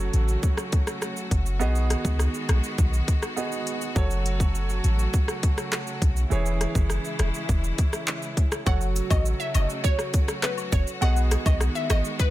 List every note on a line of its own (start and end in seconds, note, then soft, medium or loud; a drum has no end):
0.00 1.58 C#3 medium
0.00 1.56 F#3 medium
0.00 1.58 F#3 medium
0.00 1.58 A3 medium
0.00 1.57 F#4 medium
0.00 6.27 F#4 medium
0.00 1.57 A4 medium
0.00 1.57 C#5 medium
0.13 0.37 A1 loud
0.13 closed hi-hat medium
0.13 shaker soft
0.28 shaker medium
0.43 kick medium
0.43 shaker medium
0.57 cross-stick medium
0.57 shaker medium
0.72 kick loud
0.72 closed hi-hat medium
0.72 shaker medium
0.87 cross-stick medium
0.87 shaker medium
1.02 cross-stick medium
1.02 shaker medium
1.17 shaker medium
1.31 1.62 F#1 medium
1.31 kick medium
1.31 closed hi-hat medium
1.31 shaker soft
1.46 shaker medium
1.60 1.95 B1 loud
1.60 3.94 D#3 medium
1.60 3.94 G#3 medium
1.60 3.33 B3 medium
1.60 3.94 B3 medium
1.60 3.33 F#4 medium
1.60 3.34 G#4 medium
1.60 3.34 D#5 medium
1.60 shaker medium
1.75 shaker medium
1.90 cross-stick medium
1.90 closed hi-hat medium
1.90 shaker medium
2.05 2.28 C#2 medium
2.05 kick medium
2.05 shaker medium
2.19 cross-stick medium
2.19 shaker medium
2.34 shaker medium
2.49 2.60 B1 medium
2.49 cross-stick loud
2.49 closed hi-hat medium
2.49 shaker soft
2.64 shaker medium
2.78 3.01 B1 loud
2.78 kick medium
2.78 shaker medium
2.93 shaker medium
3.08 kick medium
3.08 closed hi-hat medium
3.08 shaker medium
3.22 cross-stick medium
3.22 shaker medium
3.36 3.96 B3 medium
3.36 3.94 F#4 medium
3.36 3.96 G#4 medium
3.36 3.96 D#5 medium
3.36 shaker medium
3.52 shaker medium
3.67 closed hi-hat medium
3.67 shaker medium
3.81 shaker medium
3.95 4.80 F#1 loud
3.95 8.63 C#3 medium
3.95 6.27 F#3 medium
3.95 6.29 F#3 medium
3.95 6.29 A3 medium
3.95 6.27 F#4 medium
3.95 6.28 A4 medium
3.95 6.28 C#5 medium
3.95 kick loud
3.95 shaker medium
4.11 shaker medium
4.26 closed hi-hat medium
4.26 shaker medium
4.40 kick medium
4.40 shaker medium
4.55 shaker medium
4.69 shaker medium
4.84 5.07 A1 medium
4.84 closed hi-hat medium
4.84 shaker soft
4.99 shaker medium
5.14 kick medium
5.14 shaker medium
5.28 cross-stick medium
5.28 shaker medium
5.43 kick loud
5.43 closed hi-hat medium
5.43 shaker medium
5.58 cross-stick medium
5.58 shaker medium
5.72 cross-stick medium
5.72 clap medium
5.72 shaker medium
5.87 shaker medium
6.02 6.25 B1 loud
6.02 kick medium
6.02 closed hi-hat medium
6.02 shaker medium
6.17 shaker medium
6.30 6.66 E1 loud
6.30 8.62 E3 medium
6.30 8.64 E3 medium
6.30 8.64 G#3 medium
6.30 8.62 E4 medium
6.30 8.64 E4 medium
6.30 8.63 G#4 medium
6.30 8.63 C#5 medium
6.30 shaker medium
6.46 shaker medium
6.61 cross-stick medium
6.61 closed hi-hat medium
6.61 shaker medium
6.75 6.98 F#1 medium
6.75 kick medium
6.75 shaker medium
6.90 cross-stick medium
6.90 shaker medium
7.05 shaker medium
7.19 7.31 E1 loud
7.19 cross-stick loud
7.19 closed hi-hat medium
7.19 shaker soft
7.34 shaker medium
7.49 7.72 E1 loud
7.49 kick medium
7.49 shaker medium
7.64 shaker medium
7.78 kick loud
7.78 closed hi-hat medium
7.78 shaker medium
7.93 cross-stick medium
7.93 shaker medium
8.08 clap medium
8.08 shaker medium
8.22 shaker medium
8.37 kick medium
8.37 closed hi-hat medium
8.37 shaker soft
8.52 cross-stick loud
8.52 shaker medium
8.66 9.01 F#1 loud
8.66 11.00 C#3 medium
8.66 10.97 F#3 medium
8.66 11.00 F#3 medium
8.66 11.00 A3 medium
8.66 10.98 F#4 medium
8.66 12.30 F#4 medium
8.66 10.98 A4 medium
8.66 10.99 C#5 medium
8.66 8.85 F#5 medium
8.66 kick loud
8.66 high woodblock medium
8.66 shaker medium
8.81 shaker medium
8.96 closed hi-hat medium
8.96 cabasa medium
8.96 shaker medium
9.10 9.34 A1 medium
9.10 9.20 D#5 medium
9.10 kick loud
9.10 high woodblock medium
9.10 shaker medium
9.26 shaker medium
9.40 9.49 E5 medium
9.40 shaker medium
9.54 9.66 F#1 loud
9.54 9.64 D#5 medium
9.54 closed hi-hat medium
9.54 cabasa medium
9.54 high woodblock medium
9.54 shaker soft
9.70 shaker medium
9.84 10.25 C#5 loud
9.84 kick medium
9.84 shaker medium
9.99 cross-stick medium
9.99 shaker medium
10.13 kick loud
10.13 closed hi-hat medium
10.13 cabasa medium
10.13 shaker medium
10.28 cross-stick loud
10.28 shaker medium
10.43 10.52 B4 medium
10.43 cross-stick medium
10.43 clap medium
10.43 shaker medium
10.57 high woodblock medium
10.57 shaker medium
10.72 10.84 F#1 loud
10.72 10.82 C#5 medium
10.72 kick medium
10.72 closed hi-hat medium
10.72 cabasa medium
10.72 shaker medium
10.87 shaker medium
11.01 11.36 B1 loud
11.01 12.30 D#3 medium
11.01 12.30 G#3 medium
11.01 12.30 B3 medium
11.01 12.30 F#4 medium
11.01 12.30 G#4 medium
11.01 12.30 D#5 medium
11.01 11.21 F#5 loud
11.01 high woodblock medium
11.01 shaker medium
11.16 shaker medium
11.31 cross-stick loud
11.31 closed hi-hat medium
11.31 cabasa medium
11.31 shaker medium
11.46 11.69 B1 medium
11.46 11.55 D#5 medium
11.46 kick loud
11.46 high woodblock medium
11.46 shaker medium
11.60 cross-stick medium
11.60 shaker medium
11.75 11.85 E5 medium
11.75 shaker medium
11.90 12.02 G#1 loud
11.90 11.99 D#5 medium
11.90 cross-stick loud
11.90 closed hi-hat medium
11.90 cabasa medium
11.90 high woodblock medium
11.90 shaker soft
12.05 shaker medium
12.19 12.30 B4 loud
12.19 kick medium
12.19 shaker medium